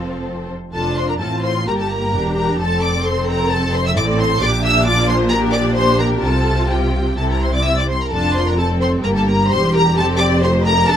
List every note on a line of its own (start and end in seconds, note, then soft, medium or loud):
0.00 0.49 F1 soft
0.00 0.49 F2 medium
0.00 0.50 F3 soft
0.00 0.50 C4 soft
0.00 0.50 A4 soft
0.00 0.50 C5 soft
0.00 0.24 F5 medium
0.73 1.17 F1 medium
0.73 1.17 F2 medium
0.73 1.18 D4 medium
0.73 1.18 F4 medium
0.73 0.95 A4 medium
0.73 0.96 A5 medium
0.96 1.08 C5 medium
0.96 1.09 C6 medium
1.09 1.14 A#4 medium
1.09 1.14 A#5 medium
1.20 1.67 A1 medium
1.20 1.67 A2 medium
1.20 1.67 C4 medium
1.20 1.66 F4 medium
1.20 1.29 A4 medium
1.20 1.43 A5 medium
1.43 1.51 C5 medium
1.43 1.66 C6 medium
1.67 2.14 G1 medium
1.67 2.14 G2 medium
1.67 2.13 A#3 medium
1.67 2.14 G4 medium
1.67 1.78 A#4 medium
1.67 1.72 A#5 medium
1.79 1.91 A4 medium
1.79 1.90 A5 medium
1.89 2.37 A#4 medium
1.89 2.35 A#5 medium
2.13 2.60 E1 medium
2.13 2.60 E2 medium
2.13 2.61 D4 medium
2.13 2.60 G4 medium
2.37 2.60 A#4 medium
2.37 2.59 A#5 medium
2.59 3.94 F1 medium
2.59 3.94 F2 medium
2.59 3.96 C4 medium
2.59 2.82 A4 medium
2.59 3.96 A4 medium
2.59 2.82 A5 medium
2.83 3.06 D5 medium
2.83 3.05 D6 medium
3.06 3.28 C5 medium
3.06 3.28 C6 medium
3.28 3.51 A#4 medium
3.28 3.51 A#5 medium
3.51 3.74 A4 medium
3.51 3.74 A5 loud
3.74 3.85 C5 medium
3.74 3.86 C6 loud
3.86 3.97 E5 medium
3.86 3.91 E6 loud
3.96 4.42 A1 medium
3.96 4.42 A2 medium
3.96 4.41 C4 medium
3.96 4.41 A4 medium
3.96 4.20 D5 medium
3.96 4.05 D6 loud
4.20 4.42 C5 medium
4.20 4.42 C6 loud
4.41 6.20 A#1 medium
4.41 6.20 A#2 medium
4.41 5.30 D4 medium
4.41 4.87 G4 medium
4.41 4.49 D5 loud
4.41 4.65 D6 loud
4.64 4.86 E5 medium
4.64 4.87 E6 loud
4.86 5.32 F4 medium
4.86 5.09 D5 medium
4.86 5.08 D6 loud
5.09 5.32 C5 medium
5.09 5.17 C6 loud
5.30 6.22 D4 medium
5.30 5.76 G4 medium
5.30 5.54 A#4 medium
5.30 5.38 A#5 loud
5.53 5.77 D5 medium
5.53 5.61 D6 loud
5.77 6.23 G4 medium
5.77 6.00 C5 medium
5.77 6.00 C6 loud
5.99 6.24 A#4 medium
5.99 6.07 A#5 medium
6.23 7.17 C2 medium
6.23 7.17 C3 medium
6.23 7.18 C4 medium
6.23 7.19 F4 medium
6.23 6.72 A4 medium
6.23 6.70 A5 medium
6.71 7.19 G4 medium
6.71 7.19 G5 medium
7.18 7.91 C2 medium
7.18 7.90 C3 medium
7.18 7.91 C4 medium
7.18 7.91 E4 medium
7.18 7.31 A4 medium
7.18 7.23 A5 medium
7.31 7.43 A#4 medium
7.31 7.42 A#5 medium
7.42 7.47 C5 medium
7.42 7.54 C6 medium
7.54 7.66 D5 medium
7.54 7.66 D6 medium
7.65 7.77 E5 medium
7.65 7.78 E6 medium
7.76 7.88 D5 medium
7.76 7.84 D6 medium
7.88 7.93 C5 medium
7.88 8.01 C6 medium
7.99 8.11 A#4 medium
8.03 8.14 A#5 medium
8.10 9.00 F1 medium
8.10 9.00 F2 medium
8.10 8.55 D4 medium
8.10 8.55 F4 medium
8.10 8.35 A4 medium
8.10 8.35 A5 loud
8.35 8.47 C5 medium
8.35 8.47 C6 medium
8.46 8.58 A#4 medium
8.46 8.59 A#5 medium
8.57 9.05 C4 medium
8.57 8.81 A4 medium
8.57 9.05 A4 medium
8.57 8.67 A5 medium
8.80 8.88 C5 medium
8.80 8.90 C6 medium
9.03 9.50 G1 medium
9.03 9.50 G2 medium
9.03 9.51 A#3 medium
9.03 10.88 G4 medium
9.03 9.15 A#4 medium
9.03 9.09 A#5 medium
9.14 9.26 A4 medium
9.14 9.21 A5 medium
9.26 9.50 A#4 medium
9.26 9.50 A#5 medium
9.49 9.97 E1 medium
9.49 9.96 E2 medium
9.49 9.96 G3 medium
9.49 9.72 C5 medium
9.49 9.74 C6 loud
9.73 9.81 A#4 medium
9.73 9.97 A#5 loud
9.96 10.97 F1 medium
9.96 10.97 F2 medium
9.96 10.43 C4 medium
9.96 10.19 A4 medium
9.96 10.05 A5 loud
10.18 10.42 D5 medium
10.18 10.27 D6 loud
10.41 10.89 A3 medium
10.41 10.65 C5 medium
10.41 10.51 C6 medium
10.64 10.87 A#4 loud
10.64 10.88 A#5 loud
10.87 10.97 D4 medium
10.87 10.97 A4 loud
10.87 10.97 A4 medium
10.87 10.97 A5 loud